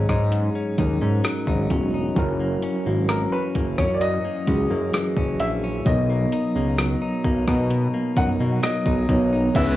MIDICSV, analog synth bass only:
0, 0, Header, 1, 2, 480
1, 0, Start_track
1, 0, Tempo, 923077
1, 1127, Time_signature, 4, 2, 24, 8
1, 5078, End_track
2, 0, Start_track
2, 0, Title_t, "Analog synth bass"
2, 0, Program_c, 0, 38
2, 47, Note_on_c, 0, 44, 102
2, 258, Note_off_c, 0, 44, 0
2, 408, Note_on_c, 0, 39, 85
2, 513, Note_off_c, 0, 39, 0
2, 528, Note_on_c, 0, 44, 91
2, 633, Note_off_c, 0, 44, 0
2, 766, Note_on_c, 0, 32, 93
2, 872, Note_off_c, 0, 32, 0
2, 886, Note_on_c, 0, 28, 88
2, 1097, Note_off_c, 0, 28, 0
2, 1127, Note_on_c, 0, 30, 110
2, 1338, Note_off_c, 0, 30, 0
2, 1488, Note_on_c, 0, 32, 90
2, 1698, Note_off_c, 0, 32, 0
2, 1847, Note_on_c, 0, 30, 86
2, 1967, Note_on_c, 0, 42, 100
2, 1975, Note_off_c, 0, 30, 0
2, 2178, Note_off_c, 0, 42, 0
2, 2328, Note_on_c, 0, 37, 87
2, 2433, Note_off_c, 0, 37, 0
2, 2447, Note_on_c, 0, 42, 88
2, 2552, Note_off_c, 0, 42, 0
2, 2687, Note_on_c, 0, 30, 95
2, 2792, Note_off_c, 0, 30, 0
2, 2808, Note_on_c, 0, 34, 86
2, 3018, Note_off_c, 0, 34, 0
2, 3047, Note_on_c, 0, 35, 111
2, 3258, Note_off_c, 0, 35, 0
2, 3408, Note_on_c, 0, 37, 88
2, 3618, Note_off_c, 0, 37, 0
2, 3768, Note_on_c, 0, 35, 86
2, 3873, Note_off_c, 0, 35, 0
2, 3888, Note_on_c, 0, 47, 103
2, 4098, Note_off_c, 0, 47, 0
2, 4249, Note_on_c, 0, 42, 88
2, 4353, Note_off_c, 0, 42, 0
2, 4369, Note_on_c, 0, 47, 89
2, 4474, Note_off_c, 0, 47, 0
2, 4607, Note_on_c, 0, 35, 91
2, 4712, Note_off_c, 0, 35, 0
2, 4727, Note_on_c, 0, 35, 105
2, 4938, Note_off_c, 0, 35, 0
2, 4967, Note_on_c, 0, 37, 108
2, 5078, Note_off_c, 0, 37, 0
2, 5078, End_track
0, 0, End_of_file